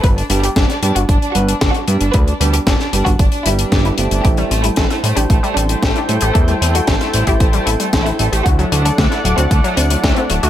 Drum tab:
HH |xxxxxxxxxxxxxxxx|xxxxxxxxxxxxxxxx|xxxxxxxxxxxxxxxx|xxxxxxxxxxxxxxxx|
SD |----oo------o---|----oo------o---|----oo------o---|----oo------o---|
BD |o---o---o---o---|o---o--oo---o---|o---o---o---o---|o---o--oo---o---|

HH |xxxxxxxxxxxxxxxx|
SD |----oo------o---|
BD |o---o---o---o---|